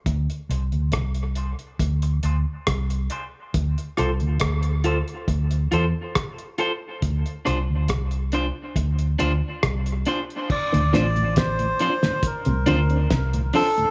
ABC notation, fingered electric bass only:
X:1
M:4/4
L:1/16
Q:1/4=69
K:Dm
V:1 name="Fingered electric bass" clef=bass
D,, z C,, D,, C,,3 z D,,2 D,, z C,,2 z2 | D,, z C,, D,, D,,3 z D,,2 E,, z4 z | D,, z C,, D,, C,,3 z D,,2 D,, z C,,2 z2 | z D,, A,,,4 z3 C,, D,,2 C,,2 z2 |]